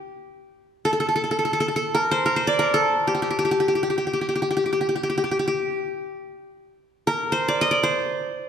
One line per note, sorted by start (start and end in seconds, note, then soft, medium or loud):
0.00 0.65 G4 soft
0.85 0.92 A4 medium
0.93 1.00 A4 soft
1.00 1.08 A4 medium
1.09 1.15 A4 soft
1.16 1.23 A4 medium
1.24 1.31 A4 soft
1.31 1.38 A4 soft
1.39 1.45 A4 soft
1.45 1.53 A4 soft
1.53 1.60 A4 medium
1.60 1.68 A4 medium
1.68 1.76 A4 soft
1.76 2.01 A4 medium
1.95 2.25 A#4 medium
2.11 2.36 C5 medium
2.26 2.59 A#4 medium
2.36 3.42 C5 medium
2.47 3.46 D5 medium
2.59 2.80 A#4 medium
2.74 3.91 A4 medium
3.07 3.14 G4 medium
3.15 3.22 G4 soft
3.22 3.30 G4 soft
3.31 3.38 G4 soft
3.39 3.44 G4 medium
3.45 3.51 G4 soft
3.51 3.60 G4 medium
3.60 3.68 G4 soft
3.68 3.75 G4 soft
3.75 3.83 G4 soft
3.83 3.90 G4 soft
3.90 3.97 G4 soft
3.98 4.06 G4 soft
4.07 4.13 G4 soft
4.13 4.21 G4 soft
4.21 4.28 G4 soft
4.29 4.35 G4 soft
4.36 4.42 G4 soft
4.42 4.50 G4 soft
4.51 4.56 G4 soft
4.57 4.65 G4 soft
4.66 4.72 G4 soft
4.73 4.80 G4 soft
4.81 4.88 G4 soft
4.89 4.95 G4 soft
4.96 5.03 G4 soft
5.03 5.09 G4 soft
5.10 5.17 G4 soft
5.18 5.23 G4 soft
5.24 5.31 G4 soft
5.31 5.39 G4 soft
5.39 5.47 G4 soft
5.48 6.73 G4 soft
7.07 8.21 A#4 medium
7.32 7.83 C5 medium
7.48 7.67 D5 medium
7.61 7.77 D#5 medium
7.71 8.49 D5 medium
7.83 8.49 C5 medium